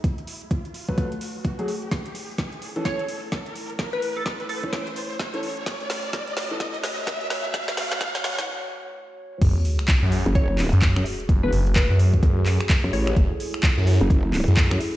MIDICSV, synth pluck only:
0, 0, Header, 1, 2, 480
1, 0, Start_track
1, 0, Key_signature, 3, "minor"
1, 0, Tempo, 468750
1, 42, Time_signature, 4, 2, 24, 8
1, 15325, End_track
2, 0, Start_track
2, 0, Title_t, "Synth pluck"
2, 0, Program_c, 0, 84
2, 2920, Note_on_c, 0, 73, 96
2, 3092, Note_off_c, 0, 73, 0
2, 4025, Note_on_c, 0, 71, 93
2, 4266, Note_on_c, 0, 69, 95
2, 4342, Note_off_c, 0, 71, 0
2, 4399, Note_off_c, 0, 69, 0
2, 4601, Note_on_c, 0, 69, 94
2, 4987, Note_off_c, 0, 69, 0
2, 10602, Note_on_c, 0, 73, 91
2, 10772, Note_off_c, 0, 73, 0
2, 11708, Note_on_c, 0, 71, 88
2, 12023, Note_off_c, 0, 71, 0
2, 12042, Note_on_c, 0, 71, 87
2, 12213, Note_off_c, 0, 71, 0
2, 13242, Note_on_c, 0, 73, 95
2, 13628, Note_off_c, 0, 73, 0
2, 15325, End_track
0, 0, End_of_file